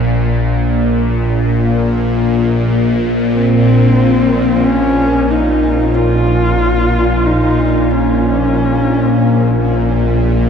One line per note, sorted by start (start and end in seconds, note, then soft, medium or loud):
0.00 5.32 A#1 medium
0.00 5.32 A#2 medium
3.34 4.66 C4 medium
4.65 5.32 C#4 loud
5.31 10.49 A#1 medium
5.31 10.49 A#2 medium
5.31 5.96 D#4 medium
5.94 7.27 F4 medium
7.26 7.93 D#4 medium
7.91 9.88 C#4 medium